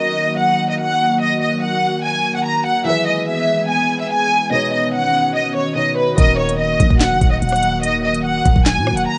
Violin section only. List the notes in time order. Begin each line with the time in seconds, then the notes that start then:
Already playing: D#5
0.39 F#5
0.70 D#5
0.80 F#5
1.21 D#5
1.42 D#5
1.63 F#5
2.04 G#5
2.35 F#5
2.46 A#5
2.66 F#5
2.87 E5
3.07 D#5
3.28 E5
3.70 G#5
4.00 E5
4.11 G#5
4.52 D#5
4.73 D#5
4.94 F#5
5.35 D#5
5.56 C#5
5.77 D#5
5.97 B4
6.18 D#5
6.39 C#5
6.59 D#5
7.01 F#5
7.32 D#5
7.42 F#5
7.83 D#5
8.04 D#5
8.25 F#5
8.66 G#5
8.97 F#5
9.08 A#5